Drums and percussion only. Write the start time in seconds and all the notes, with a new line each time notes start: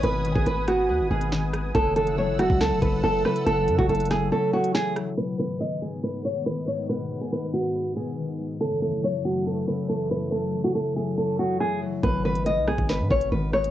0.03 closed hi-hat
0.25 closed hi-hat
0.36 kick
0.46 closed hi-hat
0.68 cross-stick, closed hi-hat
1.21 closed hi-hat
1.32 snare
1.53 cross-stick, closed hi-hat
1.75 kick, closed hi-hat
1.96 closed hi-hat
2.07 closed hi-hat
2.39 cross-stick, closed hi-hat
2.50 kick
2.61 snare, closed hi-hat
2.82 kick, closed hi-hat
3.25 cross-stick
3.36 closed hi-hat
3.46 closed hi-hat
3.68 closed hi-hat
3.78 kick
3.89 closed hi-hat
3.95 closed hi-hat
4.00 closed hi-hat
4.05 closed hi-hat
4.11 cross-stick, snare, closed hi-hat
4.64 closed hi-hat
4.75 snare
4.96 cross-stick, closed hi-hat
12.03 kick, closed hi-hat
12.36 closed hi-hat
12.46 closed hi-hat
12.68 cross-stick
12.78 kick, closed hi-hat
12.89 snare, closed hi-hat
13.11 kick
13.21 closed hi-hat
13.53 cross-stick
13.64 closed hi-hat